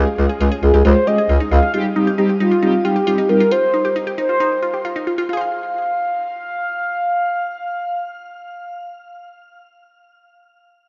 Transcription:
0.00 0.12 G4 medium
0.18 0.27 C#2 loud
0.18 0.30 G#3 medium
0.18 0.30 C#4 medium
0.18 0.30 F4 medium
0.18 0.26 F4 medium
0.18 0.30 G#4 loud
0.29 0.38 G#4 medium
0.40 0.49 C#2 loud
0.40 0.52 G#3 medium
0.40 0.52 C#4 medium
0.40 0.52 F4 medium
0.40 0.49 F4 medium
0.40 0.52 G#4 loud
0.52 0.60 G#4 medium
0.62 0.71 C#2 loud
0.62 0.74 G#3 medium
0.62 0.74 C#4 medium
0.62 0.74 F4 medium
0.62 0.71 F4 medium
0.62 0.83 G#4 medium
0.62 0.74 G#4 medium
0.74 0.82 C#2 loud
0.74 0.82 G4 medium
0.85 0.93 C#2 loud
0.85 0.97 G#3 loud
0.85 0.97 C#4 medium
0.85 0.97 F4 medium
0.85 1.01 F4 medium
0.85 0.97 G4 loud
0.85 1.09 C5 loud
1.07 1.19 G#3 medium
1.07 1.19 C#4 medium
1.07 1.19 F4 medium
1.07 1.15 G4 medium
1.07 1.19 G#4 medium
1.07 1.51 D#5 loud
1.18 1.26 G#4 medium
1.29 1.38 C#2 loud
1.29 1.41 G#3 medium
1.29 1.41 C#4 medium
1.29 1.41 F4 medium
1.29 1.37 F4 medium
1.29 1.41 G#4 medium
1.40 1.49 D#4 medium
1.51 1.60 C#2 loud
1.51 1.63 G#3 medium
1.51 1.63 C#4 medium
1.51 1.63 F4 medium
1.51 1.60 F4 medium
1.51 1.63 G#4 medium
1.51 1.72 F5 loud
1.63 1.71 F4 medium
1.74 1.85 G3 loud
1.74 1.85 C4 medium
1.74 1.85 D#4 medium
1.74 1.90 F4 medium
1.74 1.85 G4 loud
1.96 2.08 G3 medium
1.96 2.08 C4 medium
1.96 2.08 D#4 medium
1.96 2.04 D#4 medium
1.96 2.08 G4 loud
2.07 2.15 G4 medium
2.18 2.30 G3 medium
2.18 2.30 C4 medium
2.18 2.30 D#4 medium
2.18 2.26 D#4 medium
2.18 2.30 G4 loud
2.29 2.37 G4 medium
2.40 2.52 G3 medium
2.40 2.52 C4 medium
2.40 2.52 D#4 medium
2.40 2.49 D#4 medium
2.40 2.86 F4 medium
2.40 2.52 G4 medium
2.51 2.60 F4 medium
2.62 2.74 G3 loud
2.62 2.74 C4 medium
2.62 2.74 D#4 medium
2.62 2.79 D#4 medium
2.62 2.74 G4 loud
2.85 2.97 G3 medium
2.85 2.97 C4 medium
2.85 2.97 D#4 medium
2.85 2.93 F4 medium
2.85 3.29 G4 loud
2.85 2.97 G4 medium
2.96 3.04 G4 medium
3.07 3.19 G3 medium
3.07 3.19 C4 medium
3.07 3.19 D#4 medium
3.07 3.15 F4 medium
3.07 3.19 G4 medium
3.18 3.26 D#4 medium
3.29 3.41 G3 medium
3.29 3.41 C4 medium
3.29 3.41 D#4 medium
3.29 3.37 F4 medium
3.29 3.41 G4 medium
3.29 3.53 A#4 loud
3.40 3.49 F4 medium
3.51 3.68 F4 medium
3.51 3.96 C5 loud
3.74 3.82 D#4 medium
3.85 3.93 G4 medium
3.96 4.04 D#4 medium
4.07 4.15 G4 medium
4.18 4.26 D#4 medium
4.18 4.81 C5 loud
4.29 4.37 F4 medium
4.40 4.57 D#4 medium
4.62 4.71 F4 medium
4.74 4.82 G4 medium
4.85 4.93 F4 medium
4.96 5.04 D#4 medium
5.07 5.15 F4 medium
5.18 5.26 F4 medium
5.29 9.73 F4 medium
5.29 9.61 F5 loud
5.33 9.78 G#4 medium
5.37 9.82 C5 medium
5.37 9.85 F5 medium

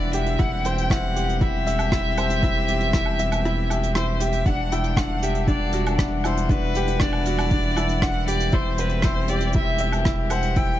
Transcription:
0.00 0.37 E1 medium
0.00 4.42 E3 medium
0.00 0.35 G3 medium
0.00 0.41 D4 loud
0.00 0.37 E4 medium
0.00 0.39 E4 medium
0.00 0.41 F#4 medium
0.00 0.14 G4 loud
0.00 0.13 D5 loud
0.00 0.35 F#5 medium
0.13 0.38 G4 loud
0.13 0.41 E5 loud
0.13 closed hi-hat medium
0.26 closed hi-hat medium
0.39 4.44 E1 medium
0.39 4.43 G3 medium
0.39 4.42 C4 medium
0.39 0.63 E4 loud
0.39 4.43 G4 medium
0.39 0.67 F#5 loud
0.39 kick loud
0.39 closed hi-hat soft
0.65 0.90 C5 medium
0.65 0.92 G5 loud
0.65 closed hi-hat medium
0.78 closed hi-hat medium
0.90 1.15 E4 medium
0.90 1.43 F#5 loud
0.90 kick loud
0.90 cross-stick loud
0.90 closed hi-hat soft
1.16 1.40 G4 medium
1.16 closed hi-hat medium
1.30 closed hi-hat medium
1.41 1.65 E4 medium
1.41 3.95 E5 loud
1.41 kick loud
1.41 closed hi-hat soft
1.67 1.91 E5 loud
1.67 closed hi-hat medium
1.79 closed hi-hat medium
1.79 low woodblock medium
1.92 2.16 E4 medium
1.92 kick loud
1.92 cross-stick loud
1.92 closed hi-hat medium
2.17 2.42 C5 medium
2.17 closed hi-hat medium
2.17 low woodblock medium
2.30 closed hi-hat medium
2.43 2.67 E4 medium
2.43 kick loud
2.43 closed hi-hat medium
2.68 2.93 G4 medium
2.68 closed hi-hat medium
2.80 closed hi-hat medium
2.93 3.18 E4 medium
2.93 kick loud
2.93 cross-stick loud
2.93 closed hi-hat medium
3.06 low woodblock medium
3.19 3.43 E5 loud
3.19 closed hi-hat medium
3.32 closed hi-hat medium
3.32 low woodblock medium
3.45 3.69 E4 loud
3.45 closed hi-hat soft
3.70 3.94 G4 medium
3.70 closed hi-hat loud
3.70 low woodblock medium
3.83 closed hi-hat medium
3.95 4.10 E4 medium
3.95 4.23 C5 medium
3.95 cross-stick loud
3.95 closed hi-hat soft
4.20 4.45 G4 medium
4.20 4.48 E5 loud
4.20 closed hi-hat medium
4.33 closed hi-hat medium
4.46 8.50 E1 medium
4.46 10.80 E3 medium
4.46 8.49 G3 medium
4.46 6.48 D4 medium
4.46 4.71 D4 medium
4.46 4.74 F#5 loud
4.46 8.49 F#5 medium
4.46 kick loud
4.46 closed hi-hat medium
4.72 4.96 E4 medium
4.72 4.99 G5 loud
4.72 closed hi-hat medium
4.84 closed hi-hat medium
4.97 5.22 D4 medium
4.97 5.25 F#5 loud
4.97 kick loud
4.97 cross-stick loud
4.97 closed hi-hat soft
5.23 5.47 G4 loud
5.23 5.48 E5 medium
5.23 closed hi-hat medium
5.35 closed hi-hat medium
5.48 5.72 D4 loud
5.48 5.95 D5 medium
5.48 kick loud
5.48 closed hi-hat soft
5.73 5.98 F#4 medium
5.73 closed hi-hat medium
5.86 closed hi-hat medium
5.86 low woodblock medium
5.98 6.23 D4 medium
5.98 kick loud
5.98 cross-stick loud
5.98 closed hi-hat medium
6.24 6.49 E4 medium
6.24 6.42 C5 medium
6.24 closed hi-hat medium
6.24 low woodblock medium
6.37 closed hi-hat medium
6.42 6.52 C5 medium
6.49 6.74 D4 medium
6.49 8.51 E4 medium
6.49 7.02 B4 loud
6.49 kick loud
6.49 closed hi-hat medium
6.75 7.00 G4 loud
6.75 closed hi-hat medium
6.87 closed hi-hat medium
7.00 7.25 D4 loud
7.00 8.04 D5 loud
7.00 kick loud
7.00 cross-stick loud
7.00 closed hi-hat medium
7.13 low woodblock medium
7.26 7.50 F#4 medium
7.26 closed hi-hat medium
7.39 closed hi-hat medium
7.39 low woodblock medium
7.51 7.76 D4 medium
7.51 kick loud
7.51 closed hi-hat soft
7.77 8.01 E4 medium
7.77 closed hi-hat medium
7.77 low woodblock medium
7.89 closed hi-hat medium
8.02 8.26 D4 medium
8.02 8.28 F#5 loud
8.02 kick loud
8.02 cross-stick loud
8.02 closed hi-hat medium
8.28 8.52 G4 loud
8.28 8.55 D5 loud
8.28 closed hi-hat loud
8.40 closed hi-hat medium
8.52 10.80 E1 medium
8.52 10.80 G3 medium
8.52 10.54 C4 medium
8.52 8.77 E4 loud
8.52 10.80 G4 medium
8.52 8.81 C5 loud
8.52 kick loud
8.52 closed hi-hat medium
8.78 9.06 B4 loud
8.78 9.03 C5 medium
8.78 closed hi-hat medium
8.89 closed hi-hat medium
9.02 9.28 E4 medium
9.02 9.31 C5 loud
9.02 kick loud
9.02 cross-stick loud
9.02 closed hi-hat medium
9.28 9.54 G4 medium
9.28 9.55 D5 loud
9.28 closed hi-hat medium
9.41 closed hi-hat medium
9.53 9.79 E4 medium
9.53 10.02 E5 loud
9.53 kick loud
9.53 closed hi-hat medium
9.78 10.04 E5 loud
9.78 closed hi-hat medium
9.92 closed hi-hat medium
9.92 low woodblock medium
10.05 10.29 E4 loud
10.05 kick loud
10.05 cross-stick loud
10.05 closed hi-hat soft
10.30 10.55 C5 medium
10.30 10.58 F#5 loud
10.30 closed hi-hat medium
10.30 low woodblock medium
10.43 closed hi-hat medium
10.56 10.80 E4 medium
10.56 10.80 G5 loud
10.56 kick loud
10.56 closed hi-hat medium

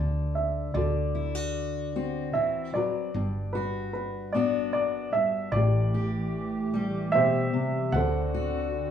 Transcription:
0.00 0.72 D2 medium
0.00 0.74 D3 medium
0.35 0.72 E5 medium
0.74 3.10 D2 medium
0.74 2.34 D3 medium
0.74 2.32 F#4 soft
0.74 2.32 A4 soft
0.74 2.39 D5 medium
1.15 1.35 E4 soft
1.35 1.95 F#4 soft
1.96 3.10 C4 soft
1.96 3.10 F#4 soft
2.33 2.74 E3 medium
2.33 2.71 E5 medium
2.74 3.14 F#3 soft
2.74 3.91 F#4 soft
2.74 3.51 B4 soft
2.74 3.56 D5 medium
3.14 5.49 G1 medium
3.14 4.73 G2 medium
3.53 4.34 F#4 medium
3.53 3.92 B4 medium
3.93 4.35 B4 medium
4.33 5.49 B3 soft
4.33 5.49 D4 soft
4.33 5.50 F#4 soft
4.33 4.71 D5 medium
4.73 5.13 F#2 soft
4.73 5.10 D5 medium
5.13 5.53 G2 soft
5.13 5.54 E5 medium
5.52 7.88 A1 medium
5.52 7.13 A2 medium
5.52 7.90 E3 medium
5.52 7.91 A3 medium
5.52 7.90 G4 medium
5.52 7.17 D5 medium
5.56 7.11 G4 medium
5.94 6.74 G4 medium
6.74 7.93 G3 medium
6.74 7.89 G4 medium
7.12 7.53 B2 medium
7.12 7.90 G4 medium
7.12 7.90 C5 medium
7.12 7.95 E5 medium
7.53 7.93 C3 medium
7.92 8.91 D2 medium
7.92 8.91 D3 medium
7.92 8.91 C4 medium
7.92 8.91 F#4 medium
7.92 8.91 A4 medium
7.92 8.91 C5 medium
7.92 8.91 F#5 medium
8.34 8.91 F#4 medium

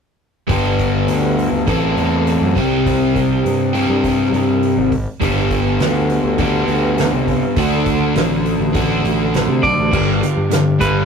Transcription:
0.47 1.05 G1 medium
0.47 1.65 G2 medium
0.47 1.65 D3 medium
0.47 1.66 G3 medium
0.47 1.66 B3 medium
0.47 1.66 D4 medium
0.47 1.66 G4 medium
0.47 kick loud
0.47 open hi-hat medium
0.79 kick medium
0.79 open hi-hat soft
1.08 1.50 D2 medium
1.08 open hi-hat medium
1.39 open hi-hat soft
1.52 1.66 D2 medium
1.67 1.95 A1 medium
1.67 2.54 A2 medium
1.67 2.54 E3 medium
1.67 2.55 C4 medium
1.67 2.55 E4 medium
1.67 2.55 A4 medium
1.67 kick medium
1.67 open hi-hat medium
1.96 2.38 E2 medium
1.96 open hi-hat soft
2.27 open hi-hat medium
2.41 2.55 F#2 medium
2.55 3.41 C2 medium
2.55 3.72 C3 medium
2.55 3.75 G3 medium
2.55 3.73 C4 medium
2.55 3.73 E4 medium
2.55 3.73 G4 medium
2.55 kick medium
2.55 open hi-hat soft
2.86 kick medium
2.86 open hi-hat medium
3.15 kick medium
3.15 open hi-hat soft
3.45 3.87 G2 medium
3.45 open hi-hat medium
3.73 4.91 C3 medium
3.73 4.91 G3 medium
3.73 4.90 C4 medium
3.73 4.90 E4 medium
3.73 4.90 G4 medium
3.73 open hi-hat soft
3.89 4.31 G2 medium
4.04 kick medium
4.04 open hi-hat medium
4.32 4.75 G2 medium
4.32 open hi-hat soft
4.63 open hi-hat medium
4.77 5.05 G#1 medium
4.92 kick medium
4.92 open hi-hat soft
5.20 5.77 G1 medium
5.20 6.37 G2 medium
5.20 6.37 D3 medium
5.20 6.38 G3 medium
5.20 6.38 B3 medium
5.20 6.40 D4 medium
5.20 6.39 G4 medium
5.20 kick loud
5.20 open hi-hat medium
5.51 kick medium
5.51 open hi-hat soft
5.80 6.22 D2 medium
5.80 snare loud
5.80 open hi-hat medium
6.10 open hi-hat soft
6.24 6.66 D2 medium
6.38 7.55 G2 medium
6.38 7.55 D3 medium
6.38 7.56 G3 medium
6.38 7.56 B3 medium
6.38 7.58 D4 medium
6.38 7.56 G4 medium
6.38 kick loud
6.38 open hi-hat medium
6.68 7.10 D2 medium
6.68 open hi-hat soft
6.98 snare loud
6.98 open hi-hat medium
7.13 7.41 C2 medium
7.27 kick medium
7.27 open hi-hat soft
7.56 8.13 D2 medium
7.56 8.72 D3 medium
7.56 8.73 A3 medium
7.56 8.74 D4 medium
7.56 8.74 F#4 medium
7.56 kick loud
7.56 open hi-hat medium
7.86 kick medium
7.86 open hi-hat soft
8.16 8.58 A1 medium
8.16 snare medium
8.16 open hi-hat medium
8.46 open hi-hat soft
8.60 9.02 A1 medium
8.73 9.90 D3 medium
8.73 9.91 A3 medium
8.73 9.92 D4 medium
8.73 9.92 F#4 medium
8.73 kick loud
8.73 open hi-hat medium
9.04 9.46 A1 medium
9.04 open hi-hat soft
9.34 snare loud
9.34 open hi-hat medium
9.48 9.62 C3 medium
9.63 9.77 B1 medium
9.63 10.77 D5 loud
9.63 kick medium
9.63 open hi-hat soft
9.78 9.92 A1 medium
9.92 10.21 G1 loud
9.92 10.20 G2 medium
9.92 10.20 D3 medium
9.92 10.21 G3 loud
9.92 kick loud
9.92 crash loud
10.21 10.48 G2 medium
10.21 10.49 D3 medium
10.21 closed hi-hat medium
10.37 10.79 G2 medium
10.51 10.78 G2 medium
10.51 10.78 D3 medium
10.51 snare loud
10.51 closed hi-hat medium
10.79 11.05 G1 medium
10.79 11.05 G2 medium
10.79 11.05 D3 medium
10.79 11.05 G3 medium
10.79 11.05 B4 medium
10.79 kick medium
10.79 closed hi-hat medium

